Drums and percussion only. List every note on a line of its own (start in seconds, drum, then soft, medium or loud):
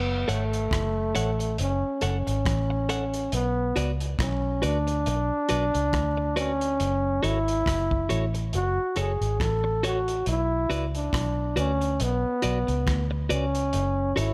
0.29 closed hi-hat medium
0.53 closed hi-hat medium
0.71 kick medium
0.71 cross-stick loud
0.71 closed hi-hat medium
1.15 closed hi-hat medium
1.40 closed hi-hat medium
1.58 closed hi-hat medium
2.01 closed hi-hat medium
2.27 closed hi-hat medium
2.46 kick loud
2.46 cross-stick loud
2.46 closed hi-hat medium
2.89 closed hi-hat medium
3.14 closed hi-hat medium
3.32 closed hi-hat medium
3.76 closed hi-hat medium
4.00 closed hi-hat soft
4.19 kick loud
4.19 cross-stick loud
4.19 closed hi-hat medium
4.63 closed hi-hat medium
4.88 closed hi-hat soft
5.06 closed hi-hat medium
5.49 closed hi-hat medium
5.75 closed hi-hat medium
5.93 kick loud
5.93 cross-stick medium
5.93 closed hi-hat medium
6.37 closed hi-hat medium
6.61 closed hi-hat medium
6.80 closed hi-hat medium
7.24 closed hi-hat medium
7.48 closed hi-hat soft
7.66 kick medium
7.66 cross-stick loud
7.66 closed hi-hat medium
7.91 kick medium
8.10 closed hi-hat medium
8.35 closed hi-hat soft
8.53 closed hi-hat medium
8.96 closed hi-hat medium
9.22 closed hi-hat soft
9.40 kick loud
9.40 cross-stick loud
9.40 closed hi-hat medium
9.84 closed hi-hat medium
10.08 closed hi-hat medium
10.26 closed hi-hat medium
10.71 closed hi-hat medium
10.95 closed hi-hat soft
11.13 kick medium
11.13 cross-stick loud
11.13 closed hi-hat medium
11.57 closed hi-hat medium
11.81 closed hi-hat soft
12.00 closed hi-hat medium
12.42 closed hi-hat medium
12.68 closed hi-hat soft
12.87 kick loud
12.87 cross-stick loud
12.87 closed hi-hat medium
13.30 closed hi-hat medium
13.55 closed hi-hat medium
13.73 closed hi-hat medium
14.17 closed hi-hat medium